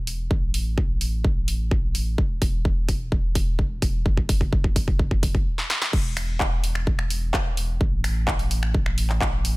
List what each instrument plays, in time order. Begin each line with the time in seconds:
Already playing: sub bass E1
0.07 open hi-hat
0.31 sub bass A1, kick
0.54 open hi-hat
0.78 kick
1.01 open hi-hat
1.24 kick
1.48 open hi-hat
1.71 kick
1.95 open hi-hat
2.18 sub bass E1, kick
2.42 kick, open hi-hat
2.65 kick
2.89 kick, open hi-hat
3.12 kick
3.35 kick, open hi-hat
3.59 kick
3.82 kick, open hi-hat
4.06 sub bass F#1, kick
4.17 kick
4.29 kick, open hi-hat
4.41 kick
4.53 kick
4.64 kick
4.76 kick, open hi-hat
4.88 kick
4.99 kick
5.11 kick
5.23 kick, open hi-hat
5.35 kick
5.58 snare
5.70 snare
5.82 snare
5.93 sub bass E1, kick, crash
6.17 finger snap, open hi-hat
6.40 kick, clap
6.64 open hi-hat
6.75 finger snap
6.87 kick
6.99 finger snap
7.10 open hi-hat
7.34 kick, clap
7.57 open hi-hat
7.81 sub bass A1, kick
8.04 finger snap, open hi-hat
8.28 kick, clap
8.39 open hi-hat
8.51 open hi-hat
8.63 finger snap
8.74 kick
8.86 finger snap
8.98 open hi-hat
9.10 clap
9.21 kick, clap
9.45 open hi-hat